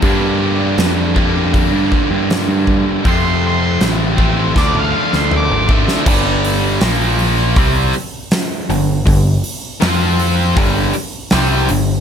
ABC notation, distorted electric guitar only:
X:1
M:4/4
L:1/8
Q:1/4=80
K:Gm
V:1 name="Distorted electric guitar" clef=bass
[G,,D,G,B,D]3 [G,,D,G,B,D]4- [G,,D,G,B,D] | [F,,C,F,A,C]3 [F,,C,F,A,C] [D,F,A,D]3 [D,F,A,D] | [G,,D,G,]2 [B,,F,B,]2 [C,G,C] z2 [G,,D,] | [G,,D,] z [F,CF]2 [G,,D,G,] z [C,G,C] [G,,D,] |]